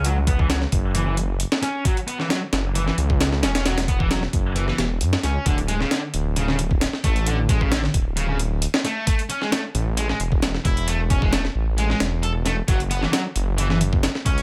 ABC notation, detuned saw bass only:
X:1
M:4/4
L:1/8
Q:"Swing 16ths" 1/4=133
K:F#m
V:1 name="Detuned saw bass" clef=bass
C,,3 F,,,3 z2 | z3 F,,,2 C,,2 E,,,- | E,,,3 F,,,2 E,,, F,, C,, | D,,,2 z D,,,3 z A,,,- |
A,,,3 D,,,3 z2 | z3 A,,,2 E,,,2 E,,,- | E,,,3 A,,,2 E,,,3 | F,,,2 z F,,,3 z C,, |]